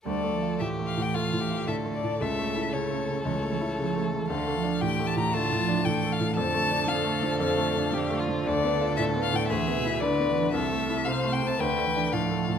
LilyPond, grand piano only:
\new Staff \with { instrumentName = "Grand piano" } { \clef bass \time 4/4 \key d \minor \tempo 4 = 115 \tuplet 3/2 { d,8 a8 f'8 a,8 a8 a,8 a8 a,8 f'8 a,8 a8 a,8 } | \tuplet 3/2 { cis,8 a8 e'8 cis8 a8 cis8 cis,8 a8 e'8 cis8 a8 cis8 } | \tuplet 3/2 { d,8 a8 d'8 a,8 a8 a,8 a8 a,8 d'8 a,8 a8 a,8 } | \tuplet 3/2 { f,8 a8 d'8 f8 a8 f8 f,8 a8 d'8 f8 a8 f8 } |
\key a \minor \tuplet 3/2 { d,8 b8 f'8 a,8 b8 a,8 d,8 b8 e'8 d8 b8 d8 } | \tuplet 3/2 { c,8 a8 e'8 c8 a8 c8 d,8 a8 d'8 a,8 a8 a,8 } | }